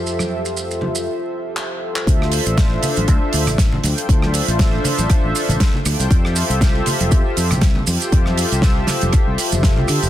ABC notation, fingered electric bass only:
X:1
M:4/4
L:1/16
Q:"Swing 16ths" 1/4=119
K:Dm
V:1 name="Fingered electric bass" clef=bass
F,,8 z8 | D,,2 z A,,,2 z2 A,,, D,, z D,, A,,,2 z D,, z | D,,2 z A,,,2 z2 A,,, z A,,, z A,,, z2 D,, C,, | F,,2 z C,,2 z2 F,,, F,, z F,, C,,2 z F,, z |
F,,2 z C,,2 z2 F,,, z C,, z F,,,2 C,, D, F,,, |]